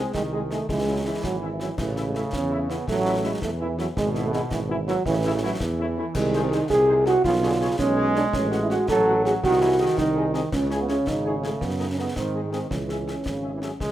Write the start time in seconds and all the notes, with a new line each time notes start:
Already playing: G#3 C4
0.14 C2 D#3 G#3, concert bass drum, snare
0.33 G#3 D#4 G#4 D#5
0.51 G#3 A3 D#4 G#4 D#5, snare
0.69 C#2 E3 G#3, concert bass drum, snare
0.88 F#3 G#3 C#4 E4 E5
1.05 E3 G#3 C#4 E4 E5
1.24 G#1 F#3, concert bass drum, snare
1.42 G#3 C#4 E4 E5
1.53 E3
1.60 F#3 G#3 C#4 E4 E5, snare
1.78 A1 C#3 E3, concert bass drum, snare, crash
1.96 A3 C#4 E4 E5, snare
2.07 G#3
2.15 A3 C#4 E4 E5, snare
2.33 E2 C#4, concert bass drum, snare
2.51 A3 C#4 E4 E5
2.70 A3 B3 C#4 E4 E5, snare
2.88 A1 F#3 A3, concert bass drum, snare
3.05 A3 C#4 E4 E5
3.23 G#3 A3 C#4 E4 E5
3.42 E2 E3 A3, concert bass drum, snare
3.60 E3 A3 C#4 E4 E5
3.78 F#3 A3 C#4 E4 E5, snare
3.97 G#1 B2 G#3, concert bass drum, snare
4.15 B3 E4 E5, snare
4.25 A3
4.33 G#3 B3 E4 E5, snare
4.51 G#1 E3, concert bass drum, snare
4.69 E3 B3 E4 E5
4.87 F#3 B3 E4 E5, snare
5.06 A1 C#3 E3, concert bass drum, snare
5.24 C#3 A3 C#4 E4 E5
5.42 F#3 A3 C#4 E4 E5
5.60 E2 E3, concert bass drum, snare
5.79 A3 C#4 E4 E5
5.98 A3 C#4 E4 E5
6.15 C2 D#3 G#3, concert bass drum, snare, crash
6.33 G#3 D#4 G#4 C5, snare
6.44 C4
6.51 G#3 D#4 G#4 C5, snare
6.70 C2 C3 G#4, concert bass drum, snare
6.88 G#3 D#4 G#4 C5
7.06 G#3 D#4 F#4 G#4 C5, snare
7.24 B1 C#3 F4, concert bass drum, snare
7.42 D3 G#3 C#4 G#4 C#5
7.61 C#3 G#3 C#4 G#4 C#5
7.79 B1 G#3 C#4, concert bass drum, snare
7.97 G#3 C#4 G#4 C#5
8.15 G#3 C#4 D4 G#4 C#5, snare
8.33 A1 C#4, concert bass drum, snare
8.51 A3 C#4 F#4 F#5, snare
8.62 E4
8.69 A3 C#4 F#4 F#5, snare
8.88 A1 F#3 A4, concert bass drum, snare
9.06 A3 C#4 F#4 F#5
9.24 A3 C#4 F#4 G#4 F#5, snare
9.43 C2 D#3 F#4, concert bass drum, snare
9.61 E3 G#3 D#4 G#4 D#5
9.79 D#3 G#3 D#4 G#4 D#5
9.98 C2 D#4, concert bass drum, snare
10.16 G#3 D#4 G#4 D#5
10.34 G#3 C4 D#4 G#4 D#5, snare
10.52 C#2 C#3 C#4, concert bass drum, snare, crash
10.70 G#3 E4 G#4 C#5, snare
10.81 B3
10.89 G#3 C#4 E4 G#4 C#5, snare
11.07 G#1 D#4, concert bass drum, snare
11.25 G#3 E4 G#4 C#5
11.36 C#4
11.42 G#3 A3 E4 G#4 C#5, snare
11.61 F#2 B3, concert bass drum, snare
11.79 A3 D#4 D#5
11.90 C#4
11.98 A3 B3 D#4 D#5
12.16 G#2 D#3 C4, concert bass drum, snare
12.35 G#3 D#4 G#4 D#5
12.45 G#3
12.52 G#3 C4 D#4 G#4 D#5, snare
12.70 C#2 E3 C#4, concert bass drum, snare
12.89 G#3 C#4 G#4 E5, snare
13.07 G#3 C#4 G#4 E5, snare
13.25 G#1 C#3, concert bass drum, snare
13.43 G#3 C#4 G#4 E5
13.54 E3
13.62 F#3 G#3 C#4 G#4 E5, snare
13.80 C#2 G#3, concert bass drum, snare